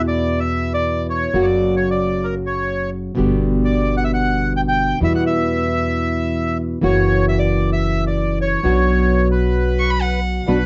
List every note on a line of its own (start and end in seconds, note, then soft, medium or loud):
0.00 1.25 E2 medium
0.00 1.32 B2 medium
0.00 1.32 E3 medium
0.00 1.32 G#3 medium
0.00 1.33 B3 medium
0.00 1.33 E4 medium
0.08 0.40 D5 medium
0.40 0.73 E5 medium
0.74 1.07 D5 medium
1.10 1.46 C#5 medium
1.33 3.08 F#1 medium
1.33 3.14 C#3 medium
1.33 3.16 F#3 medium
1.33 3.16 A#3 medium
1.33 3.17 F#4 medium
1.42 1.75 D5 medium
1.76 1.90 C#5 medium
1.91 2.26 D5 medium
2.24 2.35 A#4 medium
2.46 2.90 C#5 medium
3.15 4.92 G1 medium
3.15 4.98 B2 medium
3.15 4.99 D3 medium
3.15 4.99 G3 medium
3.15 4.99 B3 medium
3.15 5.00 G4 medium
3.65 3.96 D5 medium
3.97 4.04 F#5 medium
4.04 4.11 E5 medium
4.14 4.53 F#5 medium
4.57 4.61 G5 medium
4.68 4.99 G5 medium
5.01 6.74 E2 medium
5.01 6.81 B2 medium
5.01 6.80 E3 medium
5.01 6.83 G3 medium
5.01 6.83 B3 medium
5.01 6.83 E4 medium
5.01 5.13 E5 medium
5.15 5.24 F#5 medium
5.27 6.58 E5 medium
6.81 8.55 F#1 medium
6.81 8.62 C#3 medium
6.81 8.62 E3 medium
6.81 8.63 A#3 medium
6.81 8.65 F#4 medium
6.81 7.26 C#5 medium
7.29 7.39 E5 medium
7.39 7.70 D5 medium
7.73 8.04 E5 medium
8.07 8.39 D5 medium
8.41 9.28 C#5 medium
8.63 10.38 B1 medium
8.63 10.46 B2 medium
8.63 10.46 F#3 medium
8.63 10.47 B3 medium
8.63 10.47 D4 medium
8.63 10.47 F#4 medium
9.32 10.20 B4 medium
9.79 9.92 C#6 medium
9.90 10.03 B5 medium
10.02 10.48 F#5 medium
10.46 10.66 B1 medium
10.46 10.57 B2 medium
10.46 10.57 F#3 medium
10.46 10.66 B3 medium
10.46 10.57 B3 medium
10.46 10.66 D4 medium
10.46 10.57 D4 medium
10.46 10.66 F#4 medium
10.46 10.57 F#4 medium
10.46 10.66 B4 medium